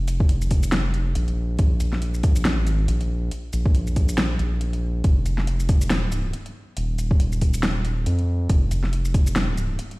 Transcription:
Already playing: F1
0.08 closed hi-hat, shaker
0.20 kick
0.29 closed hi-hat
0.41 shaker
0.51 kick, open hi-hat
0.63 shaker
0.72 snare, closed hi-hat
0.94 closed hi-hat
1.15 A#1, closed hi-hat
1.28 closed hi-hat
1.59 A#1, kick, closed hi-hat
1.80 closed hi-hat, shaker
1.93 snare
2.02 closed hi-hat
2.14 shaker
2.23 kick, open hi-hat
2.36 shaker
2.45 A1, snare, closed hi-hat
2.67 closed hi-hat, shaker
2.75 G#1
2.88 A#1, closed hi-hat
3.01 closed hi-hat
3.31 closed hi-hat
3.53 A#1, closed hi-hat, shaker
3.66 kick
3.75 closed hi-hat
3.87 shaker
3.96 kick, open hi-hat
4.09 shaker
4.18 snare, closed hi-hat
4.39 A#1, closed hi-hat
4.61 closed hi-hat
4.73 closed hi-hat
5.04 F1, kick, closed hi-hat
5.26 closed hi-hat, shaker
5.38 snare
5.47 closed hi-hat
5.60 shaker
5.69 kick, open hi-hat
5.81 shaker
5.90 snare, closed hi-hat
6.12 closed hi-hat, shaker
6.33 closed hi-hat
6.46 closed hi-hat
6.77 D#1, closed hi-hat
6.98 closed hi-hat, shaker
7.11 kick
7.20 closed hi-hat
7.32 shaker
7.41 kick, open hi-hat
7.54 shaker
7.63 snare, closed hi-hat
7.85 closed hi-hat
8.06 F2, closed hi-hat
8.19 closed hi-hat
8.49 F1, kick, closed hi-hat
8.71 closed hi-hat, shaker
8.84 snare
8.93 closed hi-hat
9.05 shaker
9.14 kick, open hi-hat
9.27 shaker
9.36 snare, closed hi-hat
9.57 closed hi-hat, shaker
9.79 closed hi-hat
9.91 closed hi-hat

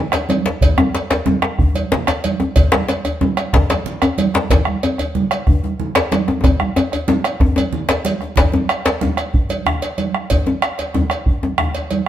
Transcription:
0.12 bombo rim, cowbell, djembe slap, high conga, djembe tone
0.29 cowbell, high conga, djembe tone
0.46 djembe slap, high conga
0.61 bombo low, cowbell, djembe slap, djembe tone, high conga, djembe bass, low conga
0.78 bombo rim, djembe tone, high conga
0.93 cowbell, djembe slap, high conga
1.10 bombo rim, cowbell, djembe slap, djembe tone, high conga
1.26 high conga, djembe tone, low conga
1.42 bombo rim, djembe slap
1.59 bombo rim, bombo low, djembe tone, djembe bass
1.75 cowbell, djembe slap, high conga
1.92 djembe slap, high conga, low conga
2.07 bombo rim, cowbell, djembe slap, djembe tone
2.24 cowbell, high conga
2.40 bombo rim, djembe slap, djembe tone, high conga
2.56 bombo low, cowbell, djembe slap, djembe tone, high conga, djembe bass, low conga
2.72 bombo rim, djembe slap, high conga
2.88 cowbell, djembe slap, high conga
3.05 bombo rim, cowbell, djembe slap, djembe tone, high conga
3.21 high conga, djembe tone, low conga
3.37 bombo rim, cowbell
3.53 bombo rim, bombo low, djembe slap, djembe tone, djembe bass
3.70 cowbell, djembe slap, high conga
3.86 high conga, low conga
4.02 bombo rim, cowbell, djembe slap, djembe tone
4.18 cowbell, high conga
4.34 bombo rim, djembe slap, high conga
4.50 bombo low, cowbell, djembe slap, djembe tone, high conga, djembe bass, low conga
4.65 bombo rim, djembe slap, high conga
4.83 cowbell, high conga, djembe tone
4.98 bombo rim, cowbell, djembe slap, djembe tone, high conga
5.15 high conga, low conga
5.31 bombo rim, cowbell
5.47 bombo rim, bombo low, djembe tone, djembe bass
5.63 djembe slap, high conga
5.80 high conga, low conga
5.95 bombo rim, cowbell, djembe slap, djembe tone
6.12 cowbell, djembe slap, high conga
6.28 bombo rim, djembe slap, high conga, djembe tone
6.44 bombo rim, bombo low, cowbell, djembe slap, djembe tone, high conga, low conga, djembe bass
6.60 bombo rim, high conga
6.76 bombo rim, cowbell, djembe tone
6.92 bombo rim, cowbell, djembe slap, djembe tone
7.08 bombo rim, high conga, djembe tone, low conga
7.24 bombo rim, cowbell
7.40 bombo rim, bombo low, djembe tone, djembe bass
7.56 cowbell, djembe slap, djembe tone, high conga
7.73 djembe slap, high conga, low conga
7.89 bombo rim, cowbell, djembe slap, djembe tone
8.05 bombo rim, cowbell, high conga
8.21 bombo rim, djembe slap, high conga
8.36 bombo low, cowbell, djembe slap, djembe tone, low conga, djembe bass
8.52 djembe slap, high conga, djembe tone
8.69 bombo rim, cowbell
8.85 bombo rim, cowbell, djembe slap, high conga, djembe tone
9.01 bombo rim, high conga, djembe tone, low conga, djembe bass
9.17 bombo rim, cowbell, high conga
9.34 bombo low, djembe tone
9.49 cowbell, djembe slap, high conga
9.66 bombo rim, high conga, djembe bass, low conga
9.82 cowbell, djembe slap, high conga, djembe tone
9.98 cowbell, high conga
10.14 bombo rim, high conga
10.30 bombo low, cowbell, djembe tone, djembe bass, low conga
10.46 djembe slap, high conga, djembe tone
10.62 bombo rim, cowbell
10.78 bombo rim, cowbell, djembe slap, djembe tone, high conga
10.94 bombo rim, high conga, djembe tone, low conga, djembe bass
11.10 bombo rim, cowbell
11.26 bombo low, djembe tone
11.43 djembe slap, djembe tone, high conga
11.58 bombo rim, high conga, low conga, djembe bass
11.74 cowbell, djembe slap, high conga, djembe tone
11.91 cowbell, high conga

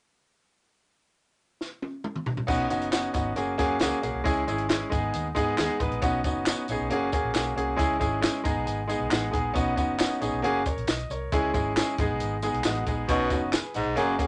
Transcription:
1.61 snare
1.82 high tom
2.04 mid tom
2.16 mid tom
2.26 floor tom
2.37 floor tom
2.47 B1 B3 C#4 D#4 F#4, kick, crash, tambourine
2.69 F#1 B3 C#4 D#4 F#4, closed hi-hat, tambourine
2.81 closed hi-hat
2.91 B3 C#4 D#4 F#4, snare, clap, closed hi-hat, tambourine
3.13 G#1 B3 C#4 D#4 F#4, kick, snare, closed hi-hat, tambourine
3.36 F#1 A#3 C#4 F#4 G#4, closed hi-hat, tambourine
3.58 F#2 A#3 C#4 F#4 G#4, kick, snare, closed hi-hat, tambourine
3.79 C#2 A#3 C#4 F#4 G#4, snare, clap, closed hi-hat, tambourine
4.02 B1 A#3 C#4 F#4 G#4, closed hi-hat, tambourine
4.14 C2
4.24 C#2 G#3 C#4 E4 G#4, kick, closed hi-hat, tambourine
4.47 G#1 G#3 C#4 E4 G#4, closed hi-hat, tambourine
4.58 closed hi-hat
4.69 G#3 C#4 E4 G#4, snare, clap, closed hi-hat, tambourine
4.90 G#1 G#3 B3 D#4 G#4, kick, closed hi-hat, tambourine
5.13 D#2, closed hi-hat, tambourine
5.35 G#2 G#3 B3 D#4 G#4, kick, closed hi-hat, tambourine
5.57 D#2 G#3 B3 D#4 G#4, snare, clap, closed hi-hat, tambourine
5.80 A1 G#3 B3 D#4 B4, kick, closed hi-hat, tambourine
5.91 A#1, closed hi-hat
6.02 B1 B3 C#4 D#4 F#4, kick, closed hi-hat, tambourine
6.24 F#1 B3 C#4 D#4 F#4, kick, closed hi-hat, tambourine
6.46 B3 C#4 D#4 F#4, snare, clap, closed hi-hat, tambourine
6.68 A#1 B3 C#4 D#4 G#4, closed hi-hat, tambourine
6.79 B1
6.90 F#1 A#3 C#4 F#4 G#4, closed hi-hat
7.12 A#3 C#4 F#4 G#4, kick, closed hi-hat, tambourine
7.23 A#1
7.34 B1 A#3 C#4 F#4 G#4, snare, clap, closed hi-hat, tambourine
7.56 C2 A#3 C#4 F#4 G#4, closed hi-hat
7.76 C#2 G#3 C#4 E4 G#4, kick, closed hi-hat, tambourine
7.99 G#1 G#3 C#4 E4 G#4, kick, closed hi-hat, tambourine
8.21 G#3 C#4 E4 G#4, snare, clap, closed hi-hat, tambourine
8.44 G#1 G#3 B3 D#4 G#4 A#5, kick, closed hi-hat, tambourine
8.55 B1
8.66 G#1 G#5, closed hi-hat, tambourine
8.88 G#3 B3 D#4 G#4, closed hi-hat, tambourine
9.00 B1
9.10 A1 G#3 B3 D#4 G#4 F#5, snare, clap, closed hi-hat, tambourine
9.31 A#1 G#3 B3 D#4 G#4 G#5, kick, closed hi-hat, tambourine
9.54 B1 B3 C#4 D#4 F#4, kick, closed hi-hat, tambourine
9.76 B3 C#4 D#4 F#4, kick, closed hi-hat, tambourine
9.98 B3 C#4 D#4 F#4, snare, clap, closed hi-hat, tambourine
10.20 A#1 B3 C#4 D#4 G#4, closed hi-hat, tambourine
10.33 B1
10.42 F#1 A#3 C#4 F#4 G#4, closed hi-hat
10.66 A#4 C#5, kick, closed hi-hat, tambourine
10.77 A#1, closed hi-hat
10.87 B1 D#5, snare, clap, closed hi-hat, tambourine
10.99 closed hi-hat
11.10 C2 A#4 C#5, closed hi-hat, tambourine
11.32 C#2 G#3 C#4 E4 G#4, kick, closed hi-hat, tambourine
11.54 G#1 G#3 C#4 E4 G#4, kick, closed hi-hat, tambourine
11.76 G#3 C#4 E4 G#4, snare, clap, closed hi-hat, tambourine
11.98 G#1 G#3 B3 D#4 G#4, kick, closed hi-hat, tambourine
12.10 B1
12.20 G#1, closed hi-hat, tambourine
12.42 G#3 B3 D#4 G#4, closed hi-hat, tambourine
12.53 B1, closed hi-hat
12.64 A1 G#3 B3 D#4 F#4, snare, clap, closed hi-hat, tambourine
12.75 closed hi-hat
12.86 A#1 G#3 B3 D#4 G#4, kick, closed hi-hat, tambourine
13.08 B1 B2 B3 C#4 D#4 F#4, kick, closed hi-hat, tambourine
13.30 F#1 B3 C#4 D#4 F#4, kick, closed hi-hat, tambourine
13.52 G#4 B4, snare, clap, closed hi-hat, tambourine
13.74 A#1 G#2 D#5 F#5, closed hi-hat, tambourine
13.86 B1
13.96 F#1 F#2 A#3 C#4 F#4 G#4, closed hi-hat, tambourine
14.18 A#3 C#4 F#4 G#4, kick, closed hi-hat, tambourine

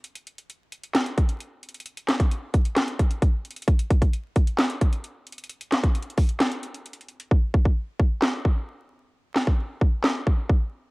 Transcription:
0.04 closed hi-hat
0.15 closed hi-hat
0.27 closed hi-hat
0.38 closed hi-hat
0.50 closed hi-hat
0.72 closed hi-hat
0.84 closed hi-hat
0.95 snare, clap, closed hi-hat
1.06 closed hi-hat
1.18 kick, closed hi-hat
1.29 closed hi-hat
1.40 closed hi-hat
1.63 closed hi-hat
1.69 closed hi-hat
1.74 closed hi-hat
1.80 closed hi-hat
1.86 closed hi-hat
1.97 closed hi-hat
2.08 snare, clap, closed hi-hat
2.20 kick, closed hi-hat
2.31 closed hi-hat
2.54 kick, closed hi-hat
2.65 closed hi-hat
2.77 snare, clap, closed hi-hat
2.88 closed hi-hat
3.00 kick, closed hi-hat
3.11 closed hi-hat
3.22 kick, closed hi-hat
3.45 closed hi-hat
3.51 closed hi-hat
3.56 closed hi-hat
3.62 closed hi-hat
3.68 kick, closed hi-hat
3.79 closed hi-hat
3.90 kick, closed hi-hat
4.02 kick, closed hi-hat
4.13 closed hi-hat
4.36 kick, closed hi-hat
4.47 closed hi-hat
4.58 snare, clap, closed hi-hat
4.70 closed hi-hat
4.81 kick, closed hi-hat
4.93 closed hi-hat
5.04 closed hi-hat
5.27 closed hi-hat
5.32 closed hi-hat
5.38 closed hi-hat
5.44 closed hi-hat
5.49 closed hi-hat
5.61 closed hi-hat
5.72 snare, clap, closed hi-hat
5.83 kick, closed hi-hat
5.95 closed hi-hat
6.02 closed hi-hat
6.10 closed hi-hat
6.17 kick, open hi-hat
6.29 closed hi-hat
6.40 snare, clap, closed hi-hat
6.52 closed hi-hat
6.63 closed hi-hat
6.74 closed hi-hat
6.86 closed hi-hat
6.93 closed hi-hat
7.01 closed hi-hat
7.09 closed hi-hat
7.20 closed hi-hat
7.31 kick
7.54 kick
7.65 kick
7.99 kick
8.22 snare, clap
8.45 kick
9.36 snare, clap
9.47 kick
9.81 kick
10.04 snare, clap
10.27 kick
10.49 kick

